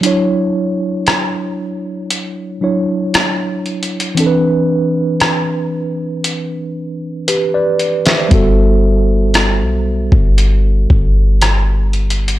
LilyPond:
<<
  \new Staff \with { instrumentName = "Tine electric piano" } { \time 4/4 \key g \major \tempo 4 = 58 << { r1 | r2. <g' b'>16 <b' d''>8 <c'' e''>16~ | <c'' e''>16 r2. r8. | } \\ { <fis d' e' cis''>2~ <fis d' e' cis''>8 <fis d' e' cis''>4. | <e c' d' a' b'>1 | <g b fis' a'>1 | } >> }
  \new Staff \with { instrumentName = "808-style bass" } { \clef bass \time 4/4 \key g \major r1 | r1 | g,,4~ g,,16 b,,8 g,,8. g,,4. | }
  \new DrumStaff \with { instrumentName = "Drums" } \drummode { \time 4/4 hh4 <hh ss>4 hh4 \tuplet 3/2 { <hh ss>16 r16 r16 hh16 hh16 hh16 } | hh4 <hh ss>4 hh4 hh8 hh16 <hh sn>16 | <hh bd>4 <hh ss>8. bd16 hh8 bd8 \tuplet 3/2 { <hh ss>16 r16 r16 hh16 hh16 hh16 } | }
>>